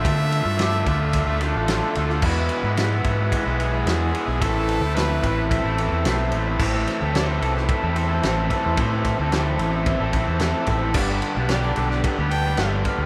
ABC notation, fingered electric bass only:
X:1
M:4/4
L:1/16
Q:1/4=110
K:Am
V:1 name="Fingered electric bass" clef=bass
D,3 G,,3 D,,3 D,,2 A,,,2 z D,,2 | E,,2 z ^G,,3 G,,2 z B,,,3 E,,2 z B,,, | A,,,3 D,,3 A,,,3 A,,,2 E,, B,,,2 A,,,2 | A,,,2 z D,,3 C,,2 z E,,3 A,,,2 z E,, |
A,,3 D,,3 A,,,3 A,,,2 E,,2 z A,,,2 | G,,,2 z B,,,3 B,,,2 z D,,3 G,,,2 z D,, |]